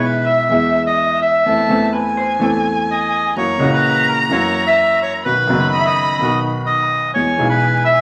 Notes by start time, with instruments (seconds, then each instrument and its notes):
Already playing: upright piano B1 B2 E3 G#3 B3 G#4, violin E5
0.04 bandoneon B4
0.26 bandoneon E5
0.49 upright piano E2 E3 G#3 B3 G#4
0.87 bandoneon D#5
1.22 bandoneon E5
1.46 upright piano E2 E3 A3 C4 A4, violin A5
1.69 upright piano E2 E3 A3 C4 A4, hollow-body jazz guitar A4
1.93 hollow-body jazz guitar B4, violin G#5
2.17 hollow-body jazz guitar C5
2.39 upright piano E2 E3 A3 C4 A4, hollow-body jazz guitar A4
2.91 bandoneon D#5
3.35 upright piano F#2 E3 F#3 A#3 C#4 F#4, bandoneon C#5, violin A#5
3.58 upright piano C#2 A#2 C#3 E3 C#4 F#4
3.73 bandoneon B4
4.08 bandoneon A#4
4.29 upright piano F#2 E3 F#3 A#3 C#4 F#4, bandoneon C#5
4.67 bandoneon E5
5.02 bandoneon C#5
5.25 upright piano B1 B2 D#3 F#3 B3 F#4, bandoneon B4, violin B5
5.47 upright piano F#1 F#2 D#3 F#3 B3
5.51 upright piano F#4
5.72 bandoneon D#5
5.79 bandoneon E5
5.85 bandoneon D#5
6.19 upright piano B1 B2 D#3 F#3 B3
6.23 upright piano F#4
6.66 bandoneon D#5
7.14 upright piano E2 E3 G#3 B3 G#4, bandoneon C#5, violin G#5
7.37 upright piano B1 B2 E3 G#3 B3
7.41 upright piano G#4
7.50 bandoneon B4
7.85 bandoneon E5